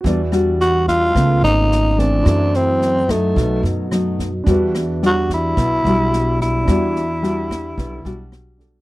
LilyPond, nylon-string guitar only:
\new Staff \with { instrumentName = "Nylon-string guitar" } { \time 4/4 \key e \minor \tempo 4 = 109 << { <g d' fis'>8 <g d' fis'>4. <a b eis'>4. <e a c'>8~ | <e a c'>4. <fis a dis'>4. <fis a dis'>8 r8 | <g d' fis'>8 r8 <g d' fis'>4 r8 <g d' fis'>4. | <g d' fis'>8 r8 <g d' fis'>4. <g d' fis'>4. | } \\ { e2 cis2 | fis,2 b,2 | e2 b,2 | e2 b,2 | } >> }